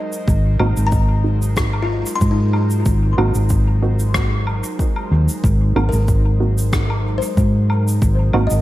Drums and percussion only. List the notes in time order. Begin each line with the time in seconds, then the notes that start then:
0.13 shaker
0.28 kick, shaker
0.60 low woodblock
0.77 shaker
0.92 kick, shaker
1.42 shaker
1.56 kick, cross-stick, shaker
1.73 low woodblock
2.06 shaker
2.21 kick, shaker
2.53 low woodblock
2.70 shaker
2.86 kick, shaker
3.18 low woodblock
3.35 shaker
3.49 kick, shaker
3.99 shaker
4.14 kick, cross-stick, shaker
4.47 low woodblock
4.64 shaker
4.79 kick, shaker
4.96 low woodblock
5.29 shaker
5.44 kick, shaker
5.76 low woodblock
5.93 shaker
6.08 kick, shaker
6.58 shaker
6.73 kick, cross-stick, shaker
6.90 low woodblock
7.22 shaker
7.37 kick, shaker
7.70 low woodblock
7.88 shaker
8.02 kick, shaker
8.33 low woodblock
8.50 shaker